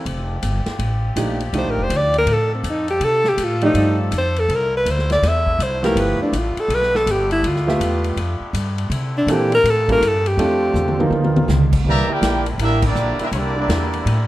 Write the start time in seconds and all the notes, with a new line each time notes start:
Already playing: C4
0.05 F1 F3 G4 D5, ride
0.43 G1, hi-hat pedal, ride
0.66 muted upright bass stroke, snare, ride
0.79 A1, ride
1.16 A#1 F3 A3 D4 D#4 G4, hi-hat pedal, ride
1.40 ride
1.53 C2 F3 A3 D4 D#4 G4, ride
1.58 C5
1.65 A1
1.70 A#4
1.78 F1
1.83 C5
1.90 D2, hi-hat pedal, ride
1.97 D5
2.14 ride
2.18 A#4
2.26 A2 A4, ride
2.32 A4
2.54 C4
2.63 F2, hi-hat pedal, ride
2.70 D#4
2.88 G4, ride
3.00 C3, ride
3.05 A4
3.24 snare
3.29 G4
3.38 A2, hi-hat pedal, ride
3.44 F4
3.61 F3 A3 D#4 G4 D5, ride
3.74 G2, ride
4.11 F2, hi-hat pedal, ride
4.18 C5
4.36 A4, ride
4.48 C2 D3 A3 A#3 E4, ride
4.55 A#4
4.77 B4
4.86 D2, hi-hat pedal, ride
4.91 C5
4.99 snare
5.10 D5, snare, ride
5.22 E2, snare, ride
5.28 E5
5.47 kick
5.59 C2 C5, hi-hat pedal, ride
5.83 F3 A3 B3 E4 G4 A#4, snare, ride
5.95 G1 D3 B3 G4, ride
6.01 B4
6.19 D4, muted upright bass stroke
6.32 A1, hi-hat pedal, ride
6.38 F4
6.56 A4, muted upright bass stroke, ride
6.68 B1, ride
6.74 B4
6.82 snare
6.95 A4, snare
7.06 G1, hi-hat pedal, ride
7.11 G4
7.31 E4, ride
7.43 D2, ride
7.47 F4
7.56 snare
7.67 A3 B3 F4 G4 E5, snare
7.80 E2, hi-hat pedal, ride
8.04 ride
8.16 F2, ride
8.40 muted upright bass stroke
8.53 G2, hi-hat pedal, ride
8.78 ride
8.90 C3 D3 C4 E4, ride
9.17 D4
9.27 A#2 E3 A#3 C4 D4 A4, hi-hat pedal, ride
9.32 G4
9.52 A#4, ride
9.63 A2 C#3 G4, ride
9.69 A4
9.88 G3 A#3 C#4 E4 A4 A#4, kick, ride
10.01 G2, hi-hat pedal, ride
10.07 A4
10.26 G4, ride
10.37 F2 D3 F3 A3 C4 D4 F4 A4, ride
10.74 E2, hi-hat pedal, mid tom
10.88 mid tom
10.99 F3 A#3 B3 D#4 A#4, mid tom
11.10 D#2 D#3 G3 F4, mid tom
11.24 mid tom
11.36 mid tom
11.48 C#2, snare, hi-hat pedal
11.72 kick, crash
11.84 C2 D3 E3 G3 A#3 C4 E4 G4 A#4 E5
11.88 D5 A#5
12.08 A#3 E4 G4 A#4 D5 G5, muted upright bass stroke
12.21 A#1, snare, hi-hat pedal, ride
12.46 ride
12.58 A1 G3 A#3 D4 E4 G4 A#4 E5, ride
12.82 G3 A#3 D4 D5, kick, crash
12.86 A#3 E4 G4
12.95 A#1, hi-hat pedal
13.19 G3 A#3 E4, muted upright bass stroke, ride
13.23 D4 G4 A#4 E5
13.32 C2 G3 A#3 D4 C#5, ride
13.36 A#3 E4 G4 D5
13.56 G3 A#3 D4 E4 G4 D5
13.68 E2, snare, hi-hat pedal, ride
13.94 ride
14.06 A2, ride